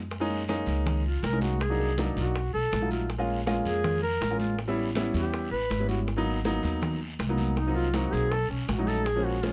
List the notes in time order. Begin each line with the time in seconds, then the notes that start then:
Already playing: F#2
0.11 high bongo, high conga, long guiro
0.20 G#3 A#3 C#4 D#4
0.30 high conga
0.48 G#3 A#3 C#4 D#4, high bongo, high conga, short guiro
0.66 C#2, short guiro
0.85 high bongo, high conga, low conga, long guiro
1.05 F4, high conga
1.23 C2 A#4, high bongo, low bongo, high conga, short guiro
1.32 G#3 A#3 C#4 D#4
1.41 F#4, high conga, short guiro
1.60 G#4, high bongo, high conga, long guiro
1.70 F#3 A#3 D4 D#4
1.80 high bongo, high conga
1.98 F#3 A#3 D4 D#4, high bongo, high conga, short guiro
2.17 B1 F#4, high bongo, short guiro
2.35 high bongo, high conga, long guiro
2.54 B1 A4, high bongo, high conga
2.72 A#1, high bongo, low bongo, high conga, short guiro
2.81 F#3 A3 D#4 F4
2.91 F4, short guiro
3.09 high bongo, high conga, long guiro
3.18 G#3 A#3 C#4 F4
3.29 high conga
3.46 G#3 A#3 C#4 F4, high bongo, high conga, short guiro
3.65 F2 G#4, high conga, short guiro
3.84 high bongo, high conga, low conga, long guiro
4.03 A#4, high conga
4.21 A1, high bongo, low bongo, high conga, short guiro
4.30 G#3 A#3 C#4 F4
4.40 F4, high conga, short guiro
4.58 high bongo, long guiro
4.68 G3 B3 C#4 E4
4.77 high bongo, high conga
4.95 G3 B3 C#4 E4, high bongo, high conga, short guiro
5.14 E2 G4, high bongo, short guiro
5.33 high bongo, high conga, long guiro
5.51 A1 B4, high bongo, high conga
5.70 G#1, high bongo, low bongo, high conga, short guiro
5.80 G3 B3 C#4 E4
5.89 F#4, high conga, short guiro
6.07 high bongo, high conga, long guiro
6.17 F#3 A#3 B3 D#4
6.27 high conga
6.45 F#3 A#3 B3 D#4, high bongo, high conga, short guiro
6.63 D#2, high conga, short guiro
6.82 high bongo, high conga, low conga, long guiro
7.01 high conga
7.19 C2, high bongo, low bongo, high conga, short guiro
7.29 F#3 A#3 B3 D#4
7.38 high conga, short guiro
7.56 D#4, high bongo, high conga, long guiro
7.67 F#3 A#3 C4 D#4
7.75 F4, high bongo, high conga
7.94 F#3 A#3 C4 D#4 F#4, high bongo, high conga, short guiro
8.13 B1 G#4, high bongo, short guiro
8.31 A4, high bongo, high conga, long guiro
8.50 B1 C#4, high bongo, high conga
8.68 A#1 F#4, high bongo, low bongo, high conga, short guiro
8.78 F#3 A3 C#4 D#4
8.87 A4, high conga, short guiro
9.06 G#4, high bongo, long guiro
9.16 F3 G#3 A#3 C#4
9.25 F#4, high conga
9.43 F3 G#3 A#3 C#4 F4, high bongo, high conga, short guiro